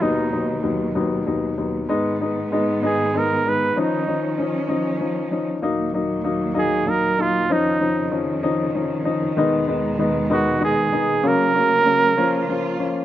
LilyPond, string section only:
\new Staff \with { instrumentName = "String section" } { \clef bass \time 6/8 \key cis \mixolydian \tempo 4. = 64 << { <b, fis>2. | <dis b>2. | <eis cis'>2. | <ais, fis>2. |
<cis dis>2. | <dis, gis>2. | <fis ais>4. <ais eis'>4. | } \\ { dis,2. | gis,2. | r2. | dis,2. |
eis,2. | b,2. | cis2. | } >> }